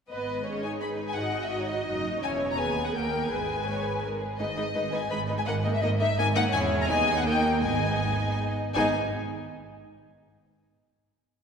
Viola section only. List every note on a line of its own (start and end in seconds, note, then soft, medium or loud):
0.10 0.43 B3 soft
0.10 0.43 B4 soft
0.46 0.63 C#4 soft
0.46 1.15 G#4 soft
0.63 1.51 D#4 soft
1.17 2.23 F#4 soft
1.52 1.86 D#4 soft
1.87 2.22 D#4 soft
2.22 2.58 C#4 medium
2.22 2.57 E4 soft
2.58 2.94 B3 soft
2.58 2.93 G#4 soft
2.94 3.30 A#3 soft
2.94 3.10 A#4 medium
3.12 3.30 A#4 medium
3.30 4.19 G#3 soft
3.30 4.21 B4 soft
4.39 4.47 G#3 soft
4.39 4.47 D#4 soft
4.57 4.64 G#3 soft
4.57 4.64 D#4 soft
4.75 4.83 G#3 soft
4.75 4.82 D#4 soft
4.94 5.01 G#3 soft
4.94 5.01 D#4 soft
5.12 5.19 G#3 soft
5.12 5.19 D#4 soft
5.30 5.37 G#3 soft
5.30 5.37 D#4 soft
5.48 5.55 A#3 medium
5.48 5.55 D#4 medium
5.65 5.72 A#3 soft
5.65 5.72 D#4 soft
5.83 5.90 A#3 medium
5.83 5.90 D#4 soft
6.01 6.08 A#3 medium
6.01 6.08 D#4 medium
6.18 6.25 A#3 medium
6.18 6.25 D#4 medium
6.36 6.43 A#3 medium
6.36 6.43 D#4 medium
6.53 6.86 C#4 medium
6.53 6.86 E4 medium
6.90 7.25 B3 medium
6.90 7.23 D#4 medium
7.24 7.61 A#3 medium
7.24 7.60 D#4 medium
7.61 8.56 B3 soft
7.61 8.54 D#4 medium
8.75 8.96 B3 medium
8.75 8.96 D#4 medium